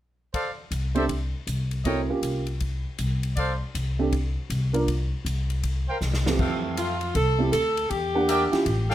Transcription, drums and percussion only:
0.34 kick, ride
0.71 hi-hat pedal, ride
0.95 ride
1.09 kick, ride
1.47 hi-hat pedal, ride
1.71 ride
1.85 kick, ride
2.23 hi-hat pedal, ride
2.47 ride
2.60 kick, ride
2.98 hi-hat pedal, ride
3.23 ride
3.37 kick, ride
3.75 hi-hat pedal, ride
4.12 kick, ride
4.50 hi-hat pedal, ride
4.74 ride
4.88 kick, ride
5.26 hi-hat pedal, ride
5.50 ride
5.63 kick, ride
6.01 snare, hi-hat pedal
6.14 snare
6.26 snare
6.39 kick, crash
6.77 hi-hat pedal, ride
7.01 ride
7.15 kick, ride
7.53 hi-hat pedal, ride
7.77 ride
7.90 kick, ride
8.29 hi-hat pedal, ride
8.53 snare, ride
8.66 kick, ride
8.90 snare

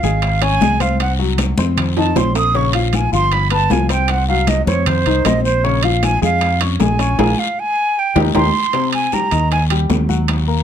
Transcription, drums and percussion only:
0.03 high bongo, short guiro
0.22 high bongo, high conga, high timbale, long guiro
0.42 high conga, high timbale
0.61 high bongo, low bongo, high conga, short guiro
0.80 high bongo, high conga, high timbale, short guiro
1.00 high bongo, high conga, high timbale, long guiro
1.20 high bongo, high conga
1.38 high bongo, high conga, high timbale, short guiro
1.58 high bongo, high conga, short guiro
1.77 high bongo, high conga, low conga, high timbale, long guiro
1.97 high conga, high timbale
2.16 high bongo, low bongo, high conga, high timbale, short guiro
2.35 high bongo, high conga, low timbale, short guiro
2.54 high bongo, high conga, long guiro
2.73 high bongo, high conga, high timbale
2.93 high bongo, high conga, high timbale, short guiro
3.13 high bongo, short guiro
3.32 high bongo, high conga, high timbale, long guiro
3.50 high conga, high timbale
3.70 high bongo, low bongo, high conga, low timbale, short guiro
3.89 high bongo, high timbale, short guiro
4.08 high bongo, high conga, high timbale, long guiro
4.28 high bongo, high conga
4.47 high bongo, high conga, high timbale, short guiro
4.67 high bongo, high conga, short guiro
4.86 high bongo, high conga, low conga, high timbale, long guiro
5.06 high conga, high timbale
5.25 high bongo, low bongo, high conga, high timbale, low timbale, short guiro
5.45 high bongo, high conga, short guiro
5.65 high bongo, high conga, long guiro
5.83 high bongo, high conga, high timbale
6.03 high bongo, high conga, high timbale, short guiro
6.22 high bongo, short guiro
6.41 high bongo, high conga, high timbale, long guiro
6.61 high conga, high timbale
6.80 high bongo, low bongo, high conga, low timbale, short guiro
6.99 high bongo, high timbale, short guiro
7.19 high bongo, high conga, high timbale, long guiro
8.16 high bongo, high conga, high timbale, long guiro
8.35 high bongo, high conga, high timbale, long guiro
8.73 high bongo, high conga, high timbale, long guiro
8.93 high conga, high timbale
9.12 high bongo, high conga, short guiro
9.31 high timbale, short guiro
9.51 high bongo, high conga, high timbale, long guiro
9.70 high conga, high timbale
9.90 high bongo, low bongo, high conga, low timbale, short guiro
10.09 high conga, short guiro
10.28 high bongo, high conga, high timbale, long guiro
10.48 high bongo, high conga

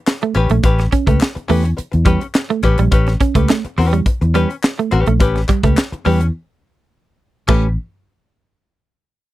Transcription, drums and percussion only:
0.07 snare, clap
0.22 closed hi-hat
0.34 closed hi-hat
0.50 closed hi-hat
0.63 kick, closed hi-hat
0.79 snare, closed hi-hat
0.92 kick, closed hi-hat
1.07 kick, closed hi-hat
1.20 snare, clap
1.37 closed hi-hat
1.49 open hi-hat
1.65 closed hi-hat
1.78 closed hi-hat
1.93 closed hi-hat
2.06 kick, closed hi-hat
2.21 closed hi-hat
2.35 snare, clap
2.50 closed hi-hat
2.63 kick, closed hi-hat
2.78 closed hi-hat
2.92 kick, closed hi-hat
3.07 snare, closed hi-hat
3.20 kick, closed hi-hat
3.35 kick, closed hi-hat
3.49 snare, clap
3.65 closed hi-hat
3.78 open hi-hat
3.93 closed hi-hat
4.06 kick, closed hi-hat
4.22 closed hi-hat
4.35 closed hi-hat
4.51 closed hi-hat
4.63 snare, clap
4.79 closed hi-hat
4.91 closed hi-hat
5.06 closed hi-hat
5.20 kick, closed hi-hat
5.36 snare, closed hi-hat
5.49 kick, clap, closed hi-hat
5.63 kick, closed hi-hat
5.77 snare, clap
5.93 closed hi-hat
6.05 open hi-hat
6.21 closed hi-hat
7.48 kick, clap, crash

